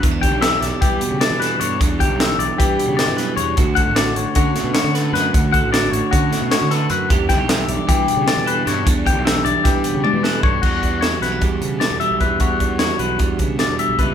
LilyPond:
<<
  \new Staff \with { instrumentName = "Clean electric guitar" } { \time 9/8 \key e \dorian \tempo 4. = 102 r8 g''8 e''8 d''8 g'4 d''8 b'8 cis''8 | r8 g''8 e''8 d''8 g'4 d''8 b'8 cis''8 | r8 fis''8 d''8 cis''8 fis'4 cis''8 a'8 b'8 | r8 fis''8 d''8 cis''8 fis'4 cis''8 a'8 b'8 |
r8 g''8 e''8 d''8 g'4 d''8 b'8 cis''8 | r8 g''8 e''8 d''8 g'4 d''8 b'8 cis''8 | fis'4 cis''8 b'8 r4 d''8 e''8 b'8 | fis'4 cis''8 b'8 r4 d''8 e''8 b'8 | }
  \new Staff \with { instrumentName = "Clean electric guitar" } { \time 9/8 \key e \dorian << { b16 d'16 g'8 b16 d'8. g4 d'8 a'8 d'8 | d'8 g'8 d'4 g2~ g8 | fis'8 a'8 fis'4 cis'4 fis'8 b'8 fis'8 | fis'8 a'8 fis'4 cis'4 fis'8 b'8 fis'8 |
<e g d' g'>8 e'16 g'16 d'4 g4 d'8 a'8 d'8 | d'8 g'8 d'4 g4 d'8 a'8 d'8 | g8 d'8 e'16 fis'16 b16 d'16 g4 b16 d'16 g8 g8 | g8 d'8 fis'8 d'8 g4 d'8 g8 g8 | } \\ { <e, d>4 e4. b,4. e,8 | e,4 e4. b,8 g,8 fis,8 e,8 | d,4 d4. a,4. d,8 | d,4 d4. a,4. d,8 |
e,4 e4. b,4. e,8 | e,4 e4. b,4. e,8 | e,4 e4. b,4. e,8 | e,4 e4. b,4. e,8 | } >> }
  \new Staff \with { instrumentName = "Fingered electric bass" } { \clef bass \time 9/8 \key e \dorian e,8. b,,8. b,,16 r16 e8 r16 cis16 r16 e8. g,8 | e,8. b,,8. b,,16 r16 e8 r16 cis16 r16 e8. e,8 | d,8. a,,8. a,,16 r16 d8 r16 b,16 r16 d8. fis,8 | d,8. a,,8. a,,16 r16 d8 r16 b,16 r16 d8. fis,8 |
e,8. b,,8. b,,16 r16 e8 r16 cis16 r16 e8. g,8 | e,8. b,,8. b,,16 r16 e8 r16 cis16 r16 e8. g,8 | e,4. b,,8 e,8 cis8 r16 e,16 r16 b,,16 e,8 | e,4. b,,8 e,8 cis8 r16 e,16 r16 b,,16 cis,8 | }
  \new DrumStaff \with { instrumentName = "Drums" } \drummode { \time 9/8 <hh bd>8 <hh bd>8 <hh sn>8 <hh sn>8 <hh bd>8 hh8 <hh sn>8 <hh sn>8 hh8 | <hh bd>8 <hh bd>8 <hh sn>8 hh8 <hh bd>8 hh8 <hh sn>8 <hh sn>8 hh8 | <hh bd>8 <hh bd>8 <hh sn>8 hh8 <hh bd>8 <hh sn>8 <hh sn>8 <hh sn>8 <hh sn>8 | <hh bd>8 <hh bd>8 <hh sn>8 hh8 <hh bd>8 <hh sn>8 <hh sn>8 <hh sn>8 hh8 |
<hh bd>8 <hh bd sn>8 <hh sn>8 hh8 <hh bd>8 hh8 <hh sn>8 hh8 <hh sn>8 | <hh bd>8 <hh bd>8 <hh sn>8 hh8 <hh bd sn>8 hh8 tommh8 sn8 bd8 | <cymc bd>8 <hh bd>8 <hh sn>8 <hh sn>8 <hh bd>8 hh8 <hh sn>8 hh8 <hh bd>8 | <hh bd>8 <hh bd>8 <hh sn>8 hh8 <hh bd>8 <hh bd>8 <hh sn>8 hh8 <hh bd>8 | }
>>